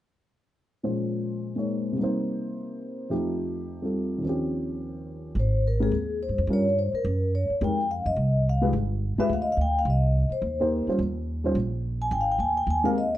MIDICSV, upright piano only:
0, 0, Header, 1, 2, 480
1, 0, Start_track
1, 0, Key_signature, -4, "major"
1, 0, Tempo, 282087
1, 1416, Time_signature, 4, 2, 24, 8
1, 22422, End_track
2, 0, Start_track
2, 0, Title_t, "Upright piano"
2, 0, Program_c, 0, 0
2, 1416, Note_on_c, 0, 53, 37
2, 1421, Note_on_c, 0, 61, 38
2, 1422, Note_on_c, 0, 46, 42
2, 1423, Note_on_c, 0, 56, 40
2, 1434, Note_on_c, 0, 72, 47
2, 2627, Note_off_c, 0, 56, 0
2, 2652, Note_on_c, 0, 56, 38
2, 2658, Note_on_c, 0, 58, 35
2, 2685, Note_on_c, 0, 63, 34
2, 2691, Note_on_c, 0, 73, 45
2, 3269, Note_on_c, 0, 48, 44
2, 3311, Note_on_c, 0, 55, 46
2, 3335, Note_off_c, 0, 56, 0
2, 3336, Note_off_c, 0, 58, 0
2, 3339, Note_off_c, 0, 53, 0
2, 3341, Note_off_c, 0, 46, 0
2, 3341, Note_off_c, 0, 61, 0
2, 3348, Note_off_c, 0, 72, 0
2, 3351, Note_off_c, 0, 63, 0
2, 3354, Note_off_c, 0, 73, 0
2, 3362, Note_on_c, 0, 58, 47
2, 3413, Note_on_c, 0, 63, 45
2, 3461, Note_on_c, 0, 72, 57
2, 5227, Note_off_c, 0, 48, 0
2, 5247, Note_off_c, 0, 55, 0
2, 5270, Note_on_c, 0, 41, 49
2, 5271, Note_off_c, 0, 63, 0
2, 5273, Note_off_c, 0, 58, 0
2, 5277, Note_on_c, 0, 53, 45
2, 5281, Note_on_c, 0, 57, 46
2, 5294, Note_on_c, 0, 67, 61
2, 5297, Note_on_c, 0, 63, 48
2, 5322, Note_off_c, 0, 72, 0
2, 6499, Note_on_c, 0, 55, 39
2, 6508, Note_on_c, 0, 60, 36
2, 6533, Note_on_c, 0, 65, 39
2, 6548, Note_on_c, 0, 69, 43
2, 7112, Note_on_c, 0, 39, 49
2, 7147, Note_on_c, 0, 51, 48
2, 7164, Note_off_c, 0, 53, 0
2, 7180, Note_off_c, 0, 55, 0
2, 7185, Note_off_c, 0, 60, 0
2, 7188, Note_off_c, 0, 41, 0
2, 7190, Note_on_c, 0, 53, 46
2, 7193, Note_off_c, 0, 57, 0
2, 7197, Note_off_c, 0, 65, 0
2, 7199, Note_off_c, 0, 67, 0
2, 7201, Note_off_c, 0, 63, 0
2, 7205, Note_off_c, 0, 69, 0
2, 7230, Note_on_c, 0, 60, 46
2, 7267, Note_on_c, 0, 61, 46
2, 7300, Note_on_c, 0, 67, 56
2, 9069, Note_off_c, 0, 39, 0
2, 9086, Note_off_c, 0, 51, 0
2, 9108, Note_off_c, 0, 53, 0
2, 9128, Note_off_c, 0, 60, 0
2, 9146, Note_off_c, 0, 61, 0
2, 9163, Note_off_c, 0, 67, 0
2, 9869, Note_on_c, 0, 67, 47
2, 9870, Note_on_c, 0, 56, 52
2, 9871, Note_on_c, 0, 60, 50
2, 9873, Note_on_c, 0, 70, 59
2, 10046, Note_off_c, 0, 67, 0
2, 10047, Note_off_c, 0, 56, 0
2, 10047, Note_off_c, 0, 60, 0
2, 10048, Note_off_c, 0, 70, 0
2, 11044, Note_on_c, 0, 55, 54
2, 11059, Note_on_c, 0, 61, 49
2, 11062, Note_on_c, 0, 65, 50
2, 11066, Note_on_c, 0, 70, 56
2, 11288, Note_off_c, 0, 55, 0
2, 11295, Note_off_c, 0, 61, 0
2, 11297, Note_off_c, 0, 65, 0
2, 11299, Note_off_c, 0, 70, 0
2, 12959, Note_on_c, 0, 56, 51
2, 12962, Note_on_c, 0, 67, 45
2, 12969, Note_on_c, 0, 63, 42
2, 12980, Note_on_c, 0, 70, 57
2, 13205, Note_off_c, 0, 56, 0
2, 13207, Note_off_c, 0, 67, 0
2, 13210, Note_off_c, 0, 63, 0
2, 13216, Note_off_c, 0, 70, 0
2, 14661, Note_on_c, 0, 56, 65
2, 14667, Note_on_c, 0, 65, 51
2, 14672, Note_on_c, 0, 71, 68
2, 14674, Note_on_c, 0, 67, 62
2, 14841, Note_off_c, 0, 56, 0
2, 14844, Note_off_c, 0, 65, 0
2, 14846, Note_off_c, 0, 71, 0
2, 14847, Note_off_c, 0, 67, 0
2, 15625, Note_on_c, 0, 56, 68
2, 15642, Note_on_c, 0, 67, 65
2, 15643, Note_on_c, 0, 65, 61
2, 15647, Note_on_c, 0, 71, 80
2, 15802, Note_off_c, 0, 56, 0
2, 15811, Note_off_c, 0, 67, 0
2, 15812, Note_off_c, 0, 65, 0
2, 15813, Note_off_c, 0, 71, 0
2, 18037, Note_on_c, 0, 63, 57
2, 18040, Note_on_c, 0, 58, 54
2, 18050, Note_on_c, 0, 67, 55
2, 18055, Note_on_c, 0, 72, 69
2, 18480, Note_off_c, 0, 63, 0
2, 18482, Note_off_c, 0, 58, 0
2, 18487, Note_off_c, 0, 67, 0
2, 18490, Note_off_c, 0, 72, 0
2, 18512, Note_on_c, 0, 55, 60
2, 18518, Note_on_c, 0, 61, 50
2, 18525, Note_on_c, 0, 65, 50
2, 18539, Note_on_c, 0, 72, 61
2, 18684, Note_off_c, 0, 55, 0
2, 18687, Note_off_c, 0, 61, 0
2, 18691, Note_off_c, 0, 65, 0
2, 18698, Note_off_c, 0, 72, 0
2, 19466, Note_on_c, 0, 55, 62
2, 19475, Note_on_c, 0, 61, 53
2, 19485, Note_on_c, 0, 65, 54
2, 19497, Note_on_c, 0, 72, 69
2, 19640, Note_off_c, 0, 55, 0
2, 19645, Note_off_c, 0, 61, 0
2, 19650, Note_off_c, 0, 65, 0
2, 19656, Note_off_c, 0, 72, 0
2, 21845, Note_on_c, 0, 56, 67
2, 21851, Note_on_c, 0, 60, 61
2, 21864, Note_on_c, 0, 67, 60
2, 21865, Note_on_c, 0, 70, 73
2, 22028, Note_off_c, 0, 56, 0
2, 22032, Note_off_c, 0, 60, 0
2, 22038, Note_off_c, 0, 67, 0
2, 22039, Note_off_c, 0, 70, 0
2, 22422, End_track
0, 0, End_of_file